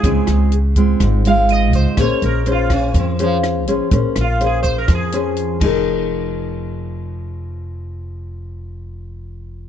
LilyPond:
<<
  \new Staff \with { instrumentName = "Sitar" } { \time 4/4 \key f \minor \tempo 4 = 124 aes'4 r4. f''8 ees''8 c''8 | des''8 bes'8 f'8 des'8 c'8 f8 r4 | r8 f'8 \tuplet 3/2 { aes'8 c''8 bes'8 } aes'4.~ aes'16 r16 | r1 |
r1 | }
  \new Staff \with { instrumentName = "Nylon-string guitar" } { \time 4/4 \key f \minor << { <aes c' f'>4 r8 <aes c' f'>4 <aes c' f'>4. | <des' aes' c''>4 <des' aes' c''>4. <des' aes' c''>4 <des' aes' c''>8 | <des' aes' c''>8 r8 <des' aes' c''>4. <des' aes' c''>4 <f ees' aes' bes'>8~ | <f ees' aes' bes'>1~ |
<f ees' aes' bes'>1 | } \\ { des2 aes,2 | bes2 f2 | bes2 f4. r8 | r1 |
r1 | } >> }
  \new Staff \with { instrumentName = "Upright bass" } { \clef bass \time 4/4 \key f \minor des,16 r16 des,4. aes,,4. des,16 r16 | bes,,16 r16 bes,,4. f,4. bes,,16 r16 | bes,,16 r16 bes,,4. f,4. f,,8~ | f,,1~ |
f,,1 | }
  \new DrumStaff \with { instrumentName = "Drums" } \drummode { \time 4/4 <hh bd>8 <hh ss>8 hh8 <hh bd>8 <hh bd ss>8 hh8 hh8 <hh bd>8 | <hh bd ss>8 hh8 hh8 <hh bd ss>8 <hh bd>8 hh8 <hh ss>8 hh8 | <hh bd>8 <hh ss>8 hh8 <hh bd>8 <hh bd ss>8 hh8 hh8 <cymc bd>8 | r4 r4 r4 r4 |
r4 r4 r4 r4 | }
>>